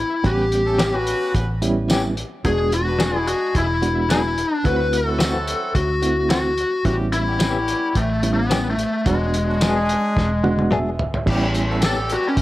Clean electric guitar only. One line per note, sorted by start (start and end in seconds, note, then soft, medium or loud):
0.79 0.96 E3 medium
0.79 0.96 B3 medium
0.79 0.97 C#4 medium
0.79 0.97 G4 medium
1.89 2.06 E3 medium
1.89 2.06 B3 medium
1.89 2.07 C#4 medium
1.89 2.07 G4 loud
2.99 3.16 F#3 medium
2.99 3.17 B3 medium
2.99 3.17 D4 medium
2.99 3.17 G#4 medium
4.09 4.26 F#3 medium
4.09 4.27 B3 medium
4.09 4.27 D4 medium
4.09 4.27 G#4 medium
5.19 5.36 E3 medium
5.19 5.37 A3 medium
5.19 5.37 C4 medium
5.19 5.37 F#4 medium
6.29 6.47 E3 medium
6.29 6.47 A3 medium
6.29 6.47 C4 medium
6.29 6.48 F#4 medium
7.40 7.57 E3 medium
7.40 7.57 B3 medium
7.40 7.58 C#4 medium
7.40 7.58 G4 medium
8.50 8.67 E3 medium
8.50 8.68 B3 medium
8.50 8.68 C#4 medium
8.50 8.68 G4 medium
9.61 9.78 F#3 medium
9.61 9.78 B3 medium
9.61 9.79 D4 medium
9.61 9.79 G#4 medium
10.71 10.88 F#3 medium
10.71 10.89 B3 medium
10.71 10.89 D4 medium
10.71 10.89 G#4 medium
11.81 11.99 E3 medium
11.81 11.99 B3 medium
11.81 11.99 C#4 medium
11.81 12.00 G4 medium